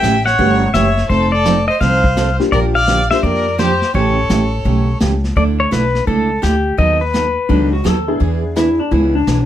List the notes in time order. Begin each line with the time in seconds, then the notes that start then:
Already playing: E5 G5
0.03 A1 C#3 E3 A3 C#4 G4, snare, hi-hat pedal
0.26 C#5 F#5, snare
0.38 G1 C#3 E3 A3 B3 C#4 F#4 G4 B4, brush sweep, kick
0.74 F#1 C#3 E3 A3 C#4 G4 C#5 E5, snare, hi-hat pedal
0.97 snare
1.09 F1 F3 C4 D#4 A4 C5, brush sweep, kick
1.32 A4 D5
1.45 F3 C4 D#4 A4, snare, hi-hat pedal
1.68 C5 D#5
1.81 C2 F3 C4 D#4 A4 C5 F5, brush sweep, kick, snare
2.04 kick
2.17 F3 C4 D#4 A4, snare, hi-hat pedal
2.39 G3 A#3 D4 F4 G4, snare
2.52 A#1 D3 F3 A#3 D4 G4 A#4 D5, brush sweep, kick
2.75 D5 F5
2.88 D3 F3 A#3 D4 G4, snare, hi-hat pedal
3.10 G3 A#3 D4 F4 G4 C5 E5, snare
3.23 F2 D3 F3 A#3 D4 G4 A#4 D5, brush sweep, kick
3.58 D3 F3 A#3 D4 G4 C5, snare, hi-hat pedal
3.82 snare
3.94 A1 C#3 E3 A3 C#4 G4 A4 C#5, brush sweep, kick
4.29 A1 C#3 E3 G3 A3 C#4 E4 G4, snare, hi-hat pedal
4.65 B1 C#3 E3 A3 C#4 G4, brush sweep, kick
5.00 C#2 C#3 E3 A3 C#4 G4, snare, hi-hat pedal
5.24 snare
5.36 D2 D3 A3 D4 E4 A4 D5, brush sweep, kick
5.60 C#5
5.71 B1 D3 A3 D4 E4 A4 B4, snare, hi-hat pedal
5.95 snare
6.07 C#2 D3 A3 D4 E4 A4, brush sweep, kick
6.42 D2 D3 A3 D4 E4 G4 A4, snare, hi-hat pedal
6.78 D#2 D#3 F#3 B3 D#4 A4 D#5, brush sweep, kick
7.01 B4
7.13 D#3 F#3 B3 D#4 A4, snare, hi-hat pedal
7.49 C#2 D#3 F#3 B3 D4 D#4 A4, brush sweep, kick
7.73 F#4
7.84 D#2 D#3 F#3 B3 D#4 A4, snare, hi-hat pedal
8.08 B3 D4 E4 G#4
8.20 E2 E3 B3 D4 G#4, brush sweep, kick
8.56 E3 B3 D4 E4 G#4, snare, hi-hat pedal
8.79 D4
8.91 C#2 E3 B3 D4 E4 G#4, brush sweep, kick
9.15 D4
9.27 B1 E3 B3 D4 G#4, snare, hi-hat pedal